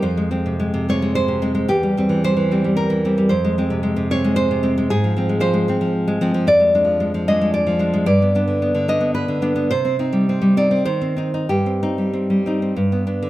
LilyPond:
\new Staff \with { instrumentName = "Nylon-string guitar" } { \clef bass \time 3/4 \key f \minor \tempo 4 = 110 << { c''4. des''8 c''4 | g'4 c''4 bes'4 | c''4. des''8 c''4 | aes'4 c''4 r4 |
\key c \minor d''4. ees''8 d''4 | d''4. ees''8 b'4 | c''4. d''8 c''4 | g'2~ g'8 r8 | } \\ { f,16 aes16 <aes c'>16 c16 aes16 c16 <aes c'>16 aes8 c16 <aes c'>16 aes16 | e,16 g16 <g c'>16 e16 g16 e16 <g c'>16 g8 e16 <g c'>16 g16 | f,16 aes16 <aes c'>16 c16 aes16 c16 <aes c'>16 aes8 c16 <aes c'>16 aes16 | aes,16 f16 <f c'>16 aes16 f16 aes16 <f c'>16 f8 aes16 <f c'>16 f16 |
f,16 aes16 <aes d'>16 f16 aes16 f16 <aes d'>16 aes8 f16 <aes d'>16 aes16 | g,16 b16 <b d'>16 d16 b16 d16 <b d'>16 b8 d16 <b d'>16 b16 | c16 c'16 <c' ees'>16 g16 c'16 g16 <c' ees'>16 c'16 ees16 c'16 <c' ees'>16 ees'16 | g,16 c'16 <c' ees'>16 g16 c'16 g16 <c' ees'>16 c'16 g,16 b16 <b d'>16 d16 | } >> }